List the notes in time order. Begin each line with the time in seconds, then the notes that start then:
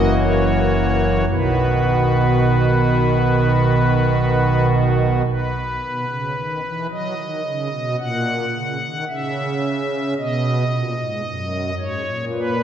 Already playing: F#1 F#2 E3 A#3 F#4 D#5
0.16 C#5
1.29 B1 B2 D#3 B3 F#4 B4
5.26 B4
5.81 B2
6.09 C#3
6.36 D#3
6.64 E3
6.90 F#3 D#5
7.18 D#3
7.44 C#3
7.71 B2
7.98 A#2 F#5
8.54 C#3
8.81 D#3
9.08 C#3 E5
10.18 B2 D#5
10.71 A#2
10.98 G#2
11.25 F#2
11.79 G#2 C#5
12.06 A#2
12.33 B4